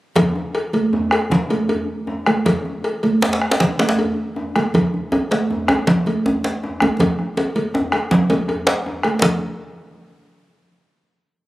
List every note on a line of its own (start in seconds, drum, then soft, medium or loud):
0.16 bombo rim soft
0.16 bombo low loud
0.16 cowbell medium
0.16 djembe slap medium
0.16 low conga medium
0.16 djembe bass medium
0.36 djembe slap soft
0.36 djembe tone medium
0.55 bombo rim soft
0.55 cowbell soft
0.73 cowbell soft
0.73 high conga medium
0.93 djembe tone medium
0.93 djembe bass medium
1.11 bombo rim medium
1.11 cowbell soft
1.30 bombo low medium
1.30 djembe slap medium
1.30 low conga medium
1.50 cowbell soft
1.50 djembe slap soft
1.50 djembe tone medium
1.50 high conga medium
1.69 cowbell soft
1.69 djembe bass medium
2.07 djembe tone medium
2.26 bombo rim medium
2.26 cowbell soft
2.26 high conga medium
2.46 bombo rim soft
2.46 bombo low medium
2.46 cowbell medium
2.46 djembe slap medium
2.46 djembe bass medium
2.46 low conga medium
2.65 djembe slap soft
2.65 djembe tone medium
2.84 bombo rim soft
2.84 cowbell soft
3.03 cowbell soft
3.03 high conga medium
3.22 djembe slap medium
3.22 djembe tone medium
3.22 djembe bass medium
3.33 djembe slap medium
3.42 bombo rim medium
3.51 djembe slap loud
3.60 bombo low medium
3.60 djembe slap medium
3.60 low conga medium
3.79 cowbell soft
3.79 djembe slap soft
3.79 djembe slap loud
3.79 djembe tone medium
3.79 high conga medium
3.89 djembe slap medium
3.98 cowbell soft
3.98 djembe bass medium
4.36 djembe tone medium
4.56 bombo rim medium
4.56 cowbell soft
4.56 high conga medium
4.74 bombo rim soft
4.74 bombo low loud
4.74 cowbell medium
4.74 djembe slap medium
4.74 low conga medium
4.74 djembe bass medium
4.94 djembe slap soft
4.94 djembe tone medium
5.12 bombo rim soft
5.12 cowbell soft
5.12 djembe bass loud
5.31 cowbell soft
5.31 djembe slap medium
5.31 high conga medium
5.51 djembe tone medium
5.51 djembe bass medium
5.68 bombo rim medium
5.68 cowbell soft
5.68 djembe bass loud
5.87 bombo low loud
5.87 djembe slap medium
5.87 low conga medium
6.06 cowbell soft
6.06 djembe slap soft
6.06 high conga medium
6.06 djembe tone medium
6.26 djembe bass medium
6.26 djembe bass loud
6.44 djembe slap medium
6.64 djembe tone medium
6.80 bombo rim medium
6.80 cowbell soft
6.80 high conga medium
6.80 djembe bass medium
6.99 bombo low loud
6.99 cowbell medium
6.99 djembe slap medium
6.99 high conga soft
6.99 djembe tone loud
6.99 low conga medium
6.99 djembe bass medium
7.19 bombo rim soft
7.19 djembe slap soft
7.19 djembe tone medium
7.37 cowbell medium
7.37 djembe tone medium
7.56 cowbell soft
7.56 high conga medium
7.74 bombo rim soft
7.74 djembe tone medium
7.74 djembe bass medium
7.92 bombo rim medium
7.92 cowbell soft
7.92 high conga soft
8.11 bombo low medium
8.11 djembe slap medium
8.11 djembe tone loud
8.11 low conga medium
8.30 bombo rim soft
8.30 cowbell soft
8.30 djembe tone medium
8.30 high conga medium
8.30 djembe tone medium
8.48 bombo rim soft
8.48 cowbell soft
8.48 djembe bass medium
8.67 djembe slap loud
8.67 high conga soft
8.86 djembe tone medium
9.03 bombo rim medium
9.03 cowbell soft
9.03 high conga medium
9.21 bombo low medium
9.21 cowbell medium
9.21 djembe slap loud
9.21 low conga medium
9.21 djembe bass medium